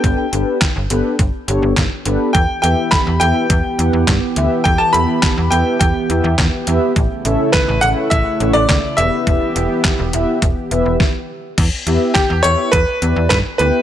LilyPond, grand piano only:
\new Staff \with { instrumentName = "Grand piano" } { \time 4/4 \key e \dorian \tempo 4 = 104 g''8 r2. r8 | g''8 g''8 b''8 g''2 r8 | g''16 a''16 b''4 g''8 g''4 r4 | r4 b'8 fis''8 e''8. d''8. e''8~ |
e''2. r4 | r4 g'8 cis''8 b'4 b'8 b'8 | }